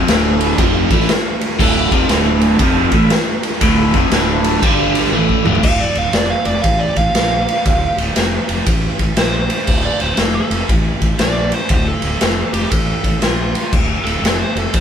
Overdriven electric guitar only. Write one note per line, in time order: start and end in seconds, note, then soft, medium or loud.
0.10 0.59 D2 medium
0.10 0.59 A2 medium
0.10 0.59 D3 medium
0.59 0.90 F2 loud
0.59 0.90 C3 loud
0.59 0.90 F3 loud
0.91 1.08 A2 medium
0.91 1.09 E3 medium
0.91 1.09 A3 loud
1.59 1.90 D2 medium
1.59 1.91 A2 medium
1.59 1.91 D3 loud
1.92 2.08 F2 medium
1.92 2.09 C3 medium
1.92 2.09 F3 medium
2.09 2.59 D2 medium
2.09 2.59 A2 loud
2.09 2.59 D3 medium
2.61 2.92 F2 medium
2.61 2.92 C3 loud
2.61 2.92 F3 loud
2.93 3.10 A2 medium
2.93 3.10 E3 medium
2.93 3.10 A3 loud
3.62 3.92 D2 medium
3.62 3.93 A2 medium
3.62 3.93 D3 loud
3.94 4.11 F2 medium
3.94 4.11 C3 loud
3.94 4.11 F3 medium
4.12 4.62 D2 medium
4.12 4.63 A2 medium
4.12 4.63 D3 loud
4.62 5.12 G2 loud
4.62 5.12 D3 loud
4.62 5.12 G3 loud
5.12 5.44 A2 medium
5.12 5.44 E3 medium
5.12 5.44 A3 medium
5.45 5.62 D2 medium
5.45 5.62 A2 loud
5.45 5.63 D3 medium